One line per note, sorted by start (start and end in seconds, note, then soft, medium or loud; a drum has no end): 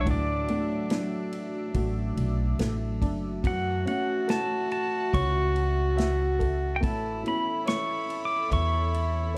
0.00 3.40 F#3 medium
0.00 0.49 A3 medium
0.00 0.48 D4 medium
0.00 0.89 D4 soft
0.00 2.98 D4 medium
0.00 1.75 F#4 medium
0.00 0.87 A4 medium
0.00 0.07 C#5 soft
0.00 6.78 E5 medium
0.00 3.40 D6 medium
0.06 0.46 D2 medium
0.06 3.40 A2 medium
0.06 3.44 E3 medium
0.06 kick medium
0.06 ride medium
0.11 2.58 D5 medium
0.48 0.91 A3 medium
0.48 2.14 A3 soft
0.48 3.53 D4 medium
0.48 3.53 F#4 medium
0.48 ride medium
0.90 1.75 A3 medium
0.90 2.55 D4 medium
0.90 snare medium
0.90 ride medium
1.32 ride soft
1.74 2.17 A1 medium
1.74 3.87 A3 medium
1.74 3.40 F#4 medium
1.74 kick medium
1.74 ride medium
2.17 2.56 B1 medium
2.17 ride medium
2.59 2.97 A1 medium
2.59 3.41 A4 medium
2.59 snare medium
2.59 ride medium
3.01 3.45 F#1 medium
3.01 3.43 D4 soft
3.01 kick medium
3.01 ride medium
3.42 3.83 F#2 medium
3.42 3.86 E3 medium
3.42 6.78 F#3 medium
3.42 6.79 F#4 medium
3.42 6.83 F#4 loud
3.42 6.78 A5 medium
3.42 kick medium
3.42 ride medium
3.47 3.87 F#5 medium
3.86 4.28 E3 medium
3.86 9.38 A3 medium
3.86 5.51 C#4 medium
3.86 6.92 C#4 medium
3.86 4.31 F#5 medium
3.86 ride soft
4.27 5.12 E3 medium
4.27 5.93 A4 soft
4.27 4.71 A5 medium
4.27 snare medium
4.27 ride medium
4.71 5.15 A5 medium
4.71 ride soft
5.13 6.83 C#2 medium
5.13 6.82 E3 medium
5.13 6.78 C#5 medium
5.13 6.37 C#6 medium
5.13 kick medium
5.13 ride medium
5.56 ride soft
5.97 6.79 E5 medium
5.97 snare medium
5.97 ride medium
6.39 6.81 A4 soft
6.39 kick medium
6.39 ride soft
6.76 9.38 C#5 medium
6.76 6.83 G5 medium
6.80 7.22 A1 medium
6.80 7.25 E3 medium
6.80 9.38 A3 medium
6.80 9.38 E4 loud
6.80 9.38 A4 medium
6.80 7.22 A5 medium
6.80 9.38 B5 medium
6.80 kick medium
6.80 ride medium
7.23 7.67 E3 medium
7.23 9.38 B3 medium
7.23 9.38 C#4 medium
7.23 8.89 E4 medium
7.23 ride soft
7.28 7.70 B5 medium
7.66 8.51 E3 medium
7.66 9.31 C#5 medium
7.66 8.25 C#6 medium
7.66 snare medium
7.66 ride medium
8.10 ride soft
8.25 8.50 D6 medium
8.50 9.38 E2 loud
8.50 9.38 E3 medium
8.50 9.38 E5 medium
8.50 9.32 C#6 medium
8.50 kick medium
8.50 ride medium
8.94 ride medium
9.34 9.38 C#5 medium